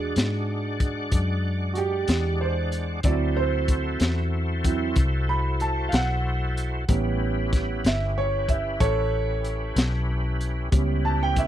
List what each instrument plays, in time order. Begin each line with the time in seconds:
Already playing: fingered electric bass E2, tonewheel organ G#3 D4 D5 F#5, upright piano G#3 D4 F#4 G#4
0.16 fingered electric bass G#2, snare, closed hi-hat
0.80 kick, closed hi-hat
1.12 fingered electric bass F#2, kick, closed hi-hat
1.74 upright piano F#4, closed hi-hat
1.78 upright piano G4
2.08 fingered electric bass E2, snare, closed hi-hat
2.41 upright piano C5
2.72 closed hi-hat
3.03 fingered electric bass D2, upright piano F#3 C4 E4 D5, tonewheel organ E4 F#4 A4 C5, kick, closed hi-hat
3.37 upright piano C5
3.68 kick, closed hi-hat
4.00 fingered electric bass E2, snare, closed hi-hat
4.64 upright piano F#3 C4 E4, kick, closed hi-hat
4.96 fingered electric bass C2, kick, closed hi-hat
5.29 upright piano B5
5.60 upright piano A5, closed hi-hat
5.89 upright piano F5, closed hi-hat
5.93 fingered electric bass B1, upright piano F#5, snare
6.57 closed hi-hat
6.88 fingered electric bass A1, upright piano G3 B3 C#4, tonewheel organ C#4 E4 G4 B4, kick, closed hi-hat
7.53 kick, snare, closed hi-hat
7.85 fingered electric bass G1, upright piano E5, snare, closed hi-hat
8.18 upright piano C#5
8.49 upright piano E5, kick, closed hi-hat
8.80 fingered electric bass A1, upright piano A4 C#5, kick, closed hi-hat
9.45 closed hi-hat
9.76 fingered electric bass B1, snare, closed hi-hat
10.41 closed hi-hat
10.71 fingered electric bass C#2, upright piano G3 B3 C#4, tonewheel organ C#4 E4 G4 B4, kick, closed hi-hat
11.05 upright piano A5
11.23 upright piano G5
11.36 upright piano E5, kick, closed hi-hat